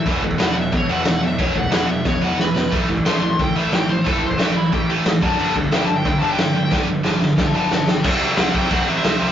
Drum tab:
CC |x---x---x---x---|x---x-----------|x---x---x---x---|x---x---x---x---|
SD |----o-------o---|----o---o---o-o-|----o-------o---|----o-------o---|
BD |o-oo----o-------|o-oo----o-------|o-oo----o-------|o-oo----o-----o-|

CC |x---x---x---x---|----------------|x-x-x-x-x-x-x-x-|
SD |----o-------o---|o---o-o-o---o-o-|----o-------o---|
BD |--oo----o-------|o-------o-------|o-----o-o-------|